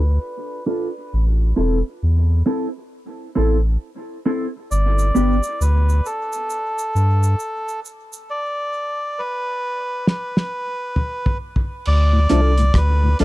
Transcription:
Already playing: sub bass D2, melodica B4
0.66 clean electric guitar D4 F4 A4
1.13 sub bass A1
1.56 sub bass E1, clean electric guitar C4 E4 A4
2.03 sub bass E2
2.46 clean electric guitar C4 E4 A4
3.35 sub bass A1, clean electric guitar C4 E4 A4
4.26 clean electric guitar C4 E4 A4
4.71 sub bass G1, melodica D5, cabasa
4.99 cabasa
5.15 sub bass G1, clean electric guitar B3 D4 G4, cabasa
5.43 cabasa
5.61 sub bass D2, melodica B4, cabasa
5.89 cabasa
6.06 melodica A4, cabasa
6.33 cabasa
6.50 cabasa
6.78 cabasa
6.95 sub bass G2, cabasa
7.23 cabasa
7.39 cabasa
7.68 cabasa
7.85 cabasa
8.13 cabasa
8.30 melodica D5
9.19 melodica B4
10.07 melodica B4, snare
10.37 snare
10.96 mid tom
11.26 floor tom
11.56 floor tom
11.85 sub bass D2, melodica D5, crash
12.13 tonewheel organ D2 A2
12.29 sub bass C2, tonewheel organ F3 A3 D4, clean electric guitar D4 F4 A4, closed hi-hat
12.58 tonewheel organ D2 A2, closed hi-hat
12.74 sub bass D2, melodica B4, kick, cross-stick, closed hi-hat
13.03 tonewheel organ D2 A2
13.19 sub bass B1, tonewheel organ F3 A3 D4, clean electric guitar D4 F4 A4, closed hi-hat

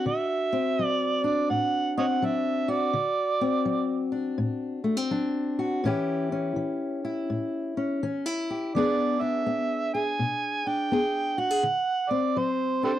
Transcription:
Already playing: steel-string acoustic guitar D4 F#4
0.06 steel-string acoustic guitar D3, harmonica E5
0.53 steel-string acoustic guitar C4
0.79 steel-string acoustic guitar F#3
0.86 harmonica D5
1.24 steel-string acoustic guitar D4, harmonica D5
1.50 steel-string acoustic guitar A2, harmonica F#5
1.97 steel-string acoustic guitar C4, harmonica C#5 D#5 F#5
2.22 steel-string acoustic guitar F#3 D4, harmonica E5
2.68 steel-string acoustic guitar F#4, harmonica D5
2.93 steel-string acoustic guitar D3
3.41 steel-string acoustic guitar C4
3.65 steel-string acoustic guitar F#3
4.12 steel-string acoustic guitar D4
4.38 steel-string acoustic guitar A2
4.84 steel-string acoustic guitar A3
4.97 steel-string acoustic guitar C4
5.11 steel-string acoustic guitar F#3 D4
5.59 steel-string acoustic guitar F#4
5.84 steel-string acoustic guitar A2 E3 C#4 E4 G4
6.32 steel-string acoustic guitar C#4
6.56 steel-string acoustic guitar E3
7.05 steel-string acoustic guitar E4
7.30 steel-string acoustic guitar A2
7.77 steel-string acoustic guitar C#4
8.03 steel-string acoustic guitar E3 C#4
8.26 steel-string acoustic guitar E4
8.50 steel-string acoustic guitar G4
8.75 steel-string acoustic guitar E3 B3 D4 G#4, harmonica D5
9.21 steel-string acoustic guitar D4, harmonica E5
9.46 steel-string acoustic guitar B3
9.94 steel-string acoustic guitar G#4, harmonica G#5
10.19 steel-string acoustic guitar B2
10.67 steel-string acoustic guitar D4, harmonica G5
10.92 steel-string acoustic guitar B3 G#4
11.38 steel-string acoustic guitar F#4, harmonica F#5
11.51 steel-string acoustic guitar G#4
11.63 steel-string acoustic guitar D3
12.10 steel-string acoustic guitar C4, harmonica D5
12.36 steel-string acoustic guitar F#3, harmonica C5
12.83 steel-string acoustic guitar D4, harmonica G4 A4 C5

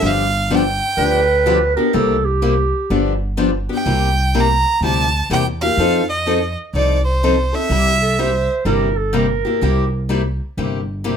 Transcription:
0.01 upright bass G1, steel-string acoustic guitar D3 F3 B3 D4 G4
0.06 violin F5
0.50 steel-string acoustic guitar D3 F3 B3 D4 G4
0.55 violin G5
0.97 upright bass D2, steel-string acoustic guitar D3 F3 B3 D4 G4, clarinet B4
1.46 steel-string acoustic guitar D3 F3 B3 D4 G4
1.76 steel-string acoustic guitar B3 D4 G4, clarinet A#4
1.93 upright bass C2, steel-string acoustic guitar C3 G3 A#3 E4 G4, clarinet A4
2.25 clarinet G4
2.42 steel-string acoustic guitar C3 G3 A#3 E4 G4
2.90 upright bass G1, steel-string acoustic guitar D3 F3 B3 D4 G4
3.37 steel-string acoustic guitar D3 F3 B3 D4 G4
3.69 steel-string acoustic guitar B3 D4 G4
3.74 violin G5
3.85 upright bass C2, steel-string acoustic guitar C3 G3 A#3 E4 G4
4.34 steel-string acoustic guitar C3 G3 A#3 E4 G4
4.40 violin A#5
4.81 upright bass D2, steel-string acoustic guitar C3 G3 A#3 E4 G4, violin A5
5.30 upright bass E2, steel-string acoustic guitar C3 G3 A#3 E4 G4, violin G5
5.61 steel-string acoustic guitar A#3 E4 G4, violin F5
5.77 upright bass F2, steel-string acoustic guitar F3 C4 D#4 A4
6.10 violin D#5
6.26 steel-string acoustic guitar F3 C4 D#4 A4
6.73 upright bass C2, steel-string acoustic guitar F3 C4 D#4 A4, violin D5
7.04 violin C5
7.23 steel-string acoustic guitar F3 C4 D#4 A4
7.53 steel-string acoustic guitar C4 D#4 A4, violin E5
7.70 upright bass C2, steel-string acoustic guitar C3 G3 A#3 E4 G4
8.02 clarinet A4
8.19 steel-string acoustic guitar C3 G3 A#3 E4 G4, clarinet C5
8.65 upright bass G1, steel-string acoustic guitar C3 G3 A#3 E4 G4, clarinet A#4
8.97 clarinet A4
9.13 steel-string acoustic guitar C3 G3 A#3 E4 G4, clarinet A#4
9.45 steel-string acoustic guitar A#3 E4 G4
9.61 upright bass C2, steel-string acoustic guitar C3 G3 A#3 E4 G4
10.09 steel-string acoustic guitar C3 G3 A#3 E4 G4
10.57 upright bass G1, steel-string acoustic guitar C3 G3 A#3 E4 G4
11.04 steel-string acoustic guitar C3 G3 A#3 E4 G4

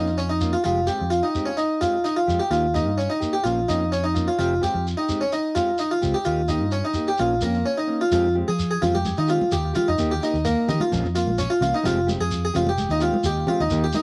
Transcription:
Already playing: fingered electric bass F2, clean electric guitar A#3, harpsichord D#4
0.07 shekere
0.18 harpsichord C#4, shekere
0.29 harpsichord D#4
0.41 clean electric guitar A#3 C#4 F4, shekere
0.53 harpsichord F4, shekere
0.64 fingered electric bass F1, clean electric guitar F3 G#3 G4, harpsichord F4, muted clean electric guitar stroke, shekere
0.87 clean electric guitar G#3 C4 G4, harpsichord G4, shekere
1.01 fingered electric bass F2
1.10 harpsichord F4, shekere
1.23 harpsichord D#4
1.35 clean electric guitar G#3 C4 G4, shekere
1.46 harpsichord C#4
1.57 harpsichord D#4, shekere
1.81 clean electric guitar G#3 C4 G4, harpsichord F4, shekere
2.04 harpsichord D#4, shekere
2.17 harpsichord F4
2.27 fingered electric bass F2, clean electric guitar G#3 C4 G4, shekere
2.40 harpsichord G4
2.51 fingered electric bass D#2, clean electric guitar D#3 A#3 D#4 G4, harpsichord F4, shekere
2.74 clean electric guitar A#3 D#4 G4, harpsichord D#4, shekere
2.87 fingered electric bass G2
2.98 harpsichord C#4, shekere
3.10 harpsichord D#4
3.20 clean electric guitar A#3 D#4 G4, shekere
3.33 harpsichord G4
3.44 fingered electric bass A#1, clean electric guitar F3 A#3 C#4 F4, harpsichord F4, shekere
3.68 fingered electric bass F2, clean electric guitar A#3 C#4 F4, harpsichord D#4, shekere
3.92 harpsichord C#4, shekere
4.04 harpsichord D#4
4.14 clean electric guitar A#3 C#4 F4, shekere
4.28 harpsichord F4
4.38 fingered electric bass F1, clean electric guitar F3 C4 G4, harpsichord F4, muted clean electric guitar stroke, shekere
4.61 clean electric guitar G#3 C4 G4, harpsichord G4, shekere
4.74 fingered electric bass F2
4.87 shekere
4.97 harpsichord D#4
5.09 clean electric guitar G#3 C4 G4, shekere
5.21 harpsichord C#4
5.32 harpsichord D#4, shekere
5.55 clean electric guitar G#3 C4 G4, harpsichord F4, shekere
5.78 harpsichord D#4, shekere
5.91 harpsichord F4
6.02 fingered electric bass C#2, clean electric guitar G#3 C4 G4, shekere
6.14 harpsichord G4
6.24 fingered electric bass D#2, clean electric guitar D#3 A#3 D#4 G4, harpsichord F4, shekere
6.48 clean electric guitar A#3 D#4 G4, harpsichord D#4, shekere
6.62 fingered electric bass G2
6.71 harpsichord C#4, shekere
6.85 harpsichord D#4
6.94 clean electric guitar A#3 D#4 G4, shekere
7.07 harpsichord G4, shekere
7.17 fingered electric bass A#1, clean electric guitar F3 A#3 C#4, harpsichord F4, shekere
7.41 fingered electric bass F2, harpsichord A#3, clean electric guitar A#3 C#4, shekere
7.54 shekere
7.66 harpsichord C#4
7.78 harpsichord D#4
7.88 clean electric guitar A#3 C#4
8.01 harpsichord F4
8.12 fingered electric bass F2, clean electric guitar F3 G#3 C4 G4, harpsichord F4, shekere
8.35 clean electric guitar G#3 C4 G4
8.48 fingered electric bass F3, harpsichord G#4, shekere
8.59 shekere
8.71 harpsichord G#4
8.82 fingered electric bass F2, clean electric guitar G#3 C4 G4, harpsichord F4, low conga, shekere
8.95 harpsichord G4, high conga
9.05 high conga, shekere
9.17 fingered electric bass D#3, harpsichord D#4, shekere
9.28 clean electric guitar G#3 C4 G4, harpsichord F4, shekere
9.41 high conga
9.52 fingered electric bass D#2, harpsichord G4, shekere
9.74 clean electric guitar G#3 G4, harpsichord F4, low conga, shekere
9.88 fingered electric bass F2, harpsichord D#4
9.98 fingered electric bass D#2, clean electric guitar D#3 A#3 D#4 G4, shekere
10.11 harpsichord G4
10.21 clean electric guitar A#3 D#4 G4, harpsichord D#4, shekere
10.34 fingered electric bass D#2, shekere
10.45 harpsichord A#3, shekere
10.68 fingered electric bass D#3, clean electric guitar A#3 D#4 G4, harpsichord D#4, low conga, shekere
10.80 harpsichord F4, high conga
10.92 fingered electric bass A#1, clean electric guitar F3 A#3 C#4 F4, high conga, shekere
11.03 fingered electric bass F2, shekere
11.15 clean electric guitar A#3 F4, harpsichord F4, muted clean electric guitar stroke, shekere
11.26 fingered electric bass A#1, high conga
11.38 harpsichord C#4, shekere
11.50 harpsichord F4
11.61 fingered electric bass C2, clean electric guitar A#3 C#4 F4, harpsichord F4, low conga, shekere
11.74 harpsichord D#4
11.83 fingered electric bass F1, clean electric guitar F3 G#3 C4 G4, harpsichord F4, shekere
12.07 clean electric guitar G#3 C4 G4, high conga, shekere
12.20 fingered electric bass F2, harpsichord G#4, shekere
12.31 shekere
12.45 harpsichord G#4
12.54 fingered electric bass F1, clean electric guitar G#3 C4 G4, harpsichord F4, low conga, shekere
12.67 harpsichord G4, high conga
12.78 high conga, shekere
12.89 fingered electric bass D#2, harpsichord D#4, shekere
13.00 clean electric guitar G#3 C4 G4, harpsichord F4, shekere
13.13 high conga
13.24 fingered electric bass D#2, harpsichord G4, shekere
13.47 clean electric guitar G#3 C4 G4, harpsichord F4, low conga
13.60 fingered electric bass D#2, harpsichord D#4
13.70 fingered electric bass D#2, clean electric guitar D#3 A#3 D#4 G4, shekere
13.84 harpsichord G4
13.93 clean electric guitar A#3 D#4, harpsichord D#4, muted clean electric guitar stroke, high conga, shekere

